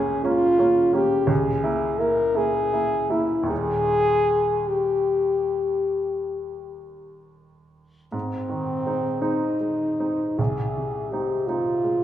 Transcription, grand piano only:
0.00 1.27 C#2 medium
0.00 0.24 G#3 medium
0.00 0.24 A#3 medium
0.00 0.25 C#4 medium
0.24 0.55 G#3 medium
0.24 0.55 A#3 medium
0.24 0.56 C#4 medium
0.58 0.90 G#3 medium
0.58 0.90 A#3 soft
0.58 0.91 C#4 medium
0.93 1.25 G#3 medium
0.93 1.26 A#3 medium
0.93 1.26 C#4 medium
1.27 1.63 C#2 medium
1.64 1.96 A#3 medium
1.64 1.96 E4 medium
1.99 2.32 A#3 soft
1.99 2.33 E4 medium
2.35 2.69 A#3 soft
2.35 2.69 E4 medium
2.72 3.07 A#3 soft
2.72 3.08 E4 soft
3.10 3.43 A#3 medium
3.10 3.46 E4 medium
3.43 8.06 D#2 medium
3.43 8.07 A#3 soft
3.43 8.08 D#4 soft
3.47 8.08 D#1 medium
8.12 10.34 G#2 medium
8.49 9.07 D#3 medium
8.86 9.19 G#3 soft
8.86 9.19 C4 soft
8.86 9.19 D#4 soft
9.21 9.56 G#3 soft
9.21 9.56 C4 medium
9.21 9.56 D#4 medium
9.61 9.98 G#3 soft
10.00 10.35 G#3 soft
10.00 10.35 C4 soft
10.00 10.35 D#4 soft
10.39 12.04 C2 medium
10.77 11.34 C3 soft
11.12 11.44 G#3 soft
11.12 11.44 C4 soft
11.12 11.45 D#4 soft
11.48 11.80 G#3 soft
11.48 11.80 C4 soft
11.48 11.81 D#4 soft
11.84 12.04 G#3 soft

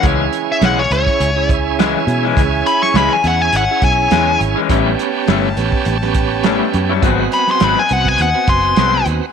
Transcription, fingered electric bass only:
0.03 0.28 C#2 loud
0.61 0.86 B1 medium
0.91 1.04 C#2 loud
1.20 1.94 C#2 medium
2.07 2.32 B2 loud
2.37 2.61 C#2 medium
2.94 3.08 C#2 medium
3.24 3.49 E2 loud
3.53 3.66 G#1 medium
3.82 4.07 B1 medium
4.11 4.36 E2 medium
4.41 4.54 G#1 medium
4.70 4.94 A1 loud
5.28 5.53 G1 loud
5.57 5.70 A1 medium
5.86 6.60 A1 medium
6.74 6.98 F#2 medium
7.03 7.27 G#1 medium
7.61 7.74 G#1 medium
7.91 8.15 C2 loud
8.19 8.32 D#2 medium
8.48 8.72 F#1 medium
8.77 9.02 C2 medium
9.06 9.19 D#2 loud

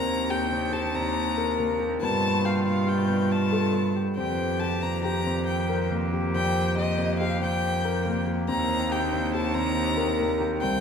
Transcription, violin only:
0.00 0.32 A#5 loud
0.30 0.75 G5 medium
0.73 0.96 A5 medium
0.95 1.80 A#5 medium
2.01 2.46 A5 loud
2.45 2.66 F5 medium
2.66 2.90 F5 medium
2.89 3.33 G5 medium
3.31 3.96 A5 medium
4.17 4.61 G5 medium
4.60 4.84 A5 medium
4.82 5.02 A#5 medium
5.03 5.44 A#5 medium
5.47 5.88 G5 medium
6.35 6.75 G5 loud
6.78 7.18 D#5 medium
7.20 7.40 F5 medium
7.42 8.24 G5 medium
8.49 8.93 A#5 loud
8.92 9.34 G5 medium
9.35 9.56 A5 medium
9.54 10.40 A#5 loud
10.61 10.80 G5 loud

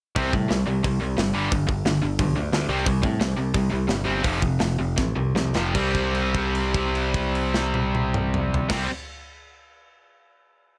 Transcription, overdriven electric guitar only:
0.16 0.31 C3 medium
0.16 0.31 G3 medium
0.16 0.33 C4 loud
0.32 0.48 C3 medium
0.32 0.48 G3 medium
0.49 0.65 C3 medium
0.49 0.65 G3 medium
0.67 0.82 C3 medium
0.67 0.82 G3 medium
0.84 0.99 C3 medium
0.84 1.00 G3 medium
1.01 1.16 C3 medium
1.01 1.16 G3 medium
1.17 1.33 C3 medium
1.17 1.33 G3 medium
1.33 1.50 G2 medium
1.33 1.50 D3 medium
1.33 1.51 G3 loud
1.51 1.66 G2 medium
1.51 1.66 D3 medium
1.67 1.83 G2 medium
1.67 1.83 D3 medium
1.85 2.01 G2 medium
1.85 2.01 D3 medium
2.02 2.18 G2 medium
2.02 2.18 D3 medium
2.19 2.34 G2 medium
2.19 2.35 D3 medium
2.35 2.51 G2 medium
2.35 2.52 D3 medium
2.53 2.68 G2 medium
2.53 2.68 D3 medium
2.69 2.85 C3 loud
2.69 2.85 G3 medium
2.69 2.86 C4 medium
2.86 3.01 C3 medium
2.86 3.02 G3 medium
3.02 3.18 C3 medium
3.02 3.19 G3 medium
3.20 3.36 C3 medium
3.20 3.36 G3 medium
3.37 3.53 C3 medium
3.37 3.53 G3 medium
3.54 3.69 C3 medium
3.54 3.70 G3 loud
3.70 3.87 C3 medium
3.70 3.87 G3 medium
3.88 4.04 C3 medium
3.88 4.04 G3 medium
4.05 4.22 C3 medium
4.05 4.23 G3 loud
4.05 4.24 C4 loud
4.23 4.40 F2 loud
4.23 4.40 C3 medium
4.23 4.41 F3 medium
4.41 4.58 F2 medium
4.41 4.58 C3 medium
4.59 4.77 F2 medium
4.59 4.77 C3 medium
4.79 4.95 F2 medium
4.79 4.96 C3 medium
4.97 5.14 F2 medium
4.97 5.14 C3 medium
5.16 5.33 F2 medium
5.16 5.33 C3 medium
5.35 5.53 F2 medium
5.35 5.53 C3 medium
5.55 5.73 F2 medium
5.55 5.73 C3 medium
5.55 5.74 F3 loud
5.74 8.68 C3 medium
5.74 8.71 G3 loud
5.74 8.72 C4 loud
8.69 8.87 C3 loud
8.69 8.88 G3 loud
8.69 8.89 C4 loud

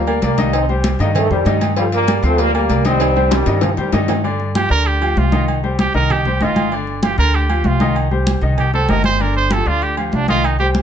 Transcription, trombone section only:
0.00 0.20 G3 medium
0.00 0.19 A#3 loud
0.23 0.52 G3 medium
0.23 0.52 A#3 medium
0.55 0.68 C4 medium
0.55 0.68 D#4 medium
1.01 1.11 G3 medium
1.01 1.11 A#3 medium
1.12 1.16 A#3 medium
1.17 1.31 D#3 medium
1.17 1.31 A3 loud
1.31 1.60 D#3 medium
1.31 1.60 G3 medium
1.78 1.85 D3 medium
1.78 1.85 G3 medium
1.93 2.22 G3 medium
1.93 2.22 A#3 loud
2.24 2.40 A3 medium
2.24 2.39 C4 loud
2.39 2.54 G3 medium
2.39 2.53 A#3 loud
2.55 2.84 G3 medium
2.55 2.83 A#3 loud
2.86 3.32 G3 medium
2.86 3.32 C4 loud
3.33 3.61 D#3 medium
3.33 3.61 G3 loud
3.64 3.71 C3 medium
3.64 3.70 F3 loud
3.79 4.08 D#3 medium
3.79 4.07 G3 medium

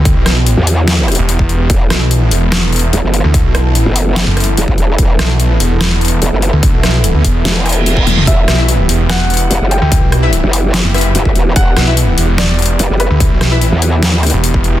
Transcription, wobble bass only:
0.57 1.17 E2 loud
1.70 1.89 E1 loud
2.93 3.02 E1 loud
3.04 3.22 F#1 medium
3.86 4.25 F#1 loud
4.57 4.66 E1 medium
4.68 4.76 G1 loud
4.78 4.97 E1 loud
4.98 5.17 E1 loud
6.22 6.31 E1 loud
6.32 6.51 F#1 loud
7.45 8.05 E1 loud
8.27 8.46 E1 loud
9.51 9.59 E1 loud
9.61 9.80 F#1 loud
10.43 10.83 F#1 loud
11.15 11.24 E1 medium
11.25 11.34 G1 loud
11.35 11.54 E1 medium
11.56 11.75 E1 loud
12.79 12.88 E1 loud
12.90 13.09 F#1 loud
13.72 14.15 E2 medium
14.15 14.32 D#2 medium

